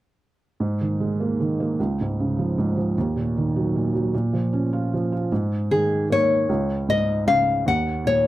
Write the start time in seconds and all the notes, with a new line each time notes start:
0.60 G#2
0.81 D#3
1.00 G#3
1.20 A#3
1.40 D#3
1.60 A#3
1.80 C#2
2.01 G#2
2.20 C#3
2.39 F3
2.58 G#2
2.77 F3
2.98 D#2
3.16 A#2
3.37 D#3
3.56 F#3
3.76 A#2
3.95 F#3
4.14 A#2
4.33 F3
4.53 C#4
4.73 F4
4.94 F3
5.12 F4
5.32 G#2
5.71 D#3 G#4
6.10 A#3 C#5
6.49 C#2
6.88 G#2 D#5
7.27 C#3 F5
7.66 D#2 F#5
8.05 A#2 C#5